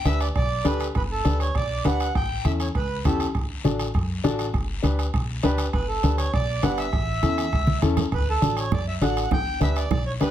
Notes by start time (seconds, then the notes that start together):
0.05 D2 D4 G4 B4 E5, bombo rim, high conga, short guiro
0.20 D5, bombo rim, short guiro
0.35 B1 D5, bombo low, bombo rim, high conga, long guiro
0.64 D2 D4 G4 A4 B4, bombo rim, high conga, short guiro
0.80 bombo rim, short guiro
0.95 G1 B4, bombo low, bombo rim, high conga, long guiro
1.11 A4
1.25 D2 D4 G4 B4, bombo rim, high conga, short guiro
1.40 C#5, bombo rim, short guiro
1.55 B1 D5, bombo low, bombo rim, high conga, long guiro
1.85 D2 D4 G4 B4 F#5, bombo rim, high conga, short guiro
2.00 bombo rim, short guiro
2.15 A1 G5, bombo low, bombo rim, high conga, long guiro
2.44 E2 C#4 E4 A4 E5, bombo rim, high conga, short guiro
2.60 C#5, bombo rim, short guiro
2.75 C#2 B4, bombo low, bombo rim, high conga, long guiro
3.05 E2 C#4 E4 G4 A4, bombo low, bombo rim, high conga, short guiro
3.20 bombo rim, short guiro
3.35 D2, bombo low, bombo rim, high conga, long guiro
3.64 A1 D4 F#4 A4, bombo rim, high conga, short guiro
3.79 bombo rim, short guiro
3.94 F#2, bombo low, bombo rim, high conga, long guiro
4.24 A1 D4 F#4 A4, bombo rim, high conga, short guiro
4.39 bombo rim, short guiro
4.54 G1, bombo low, bombo rim, high conga, long guiro
4.82 D2 D4 G4 B4, bombo rim, high conga, short guiro
4.99 bombo rim, short guiro
5.14 B1, bombo low, bombo rim, high conga, long guiro
5.43 D2 D4 G4 B4, bombo rim, high conga, short guiro
5.58 bombo rim, short guiro
5.73 G1 B4, bombo low, bombo rim, high conga, long guiro
5.88 A4
6.03 D2 D4 G4 B4, bombo rim, high conga, short guiro
6.18 C#5, bombo rim, short guiro
6.33 B1 D5, bombo low, bombo rim, high conga, long guiro
6.63 G1 D4 G4 B4 F#5, bombo rim, high conga, short guiro
6.78 E5, bombo rim, short guiro
6.93 A1, bombo low, bombo rim, high conga, long guiro
7.23 E2 C#4 E4 A4, bombo rim, high conga, short guiro
7.38 bombo rim, short guiro
7.52 C#2, bombo low, bombo rim, high conga, long guiro
7.67 high conga
7.82 E2 C#4 E4 A4, bombo rim, high conga, short guiro
7.97 bombo rim, low conga, short guiro
8.12 D2 B4, bombo low, bombo rim, high conga, long guiro
8.30 A4
8.42 A1 D4 F#4 A4, bombo rim, high conga, short guiro
8.57 C#5, bombo rim, short guiro
8.72 F#2 D5, bombo low, bombo rim, high conga, low conga, long guiro
8.88 E5
9.01 A1 D4 F#4 A4 F#5, bombo rim, high conga, short guiro
9.17 bombo rim, short guiro
9.31 G1 G5, bombo low, bombo rim, high conga, low conga, long guiro
9.60 D2 D4 G4 B4 E5, bombo rim, high conga, short guiro
9.76 D5, bombo rim, short guiro
9.91 B1 D5, bombo low, bombo rim, high conga, low conga, long guiro
10.06 C#5
10.20 D2 D4 G4 B4, bombo rim, high conga, short guiro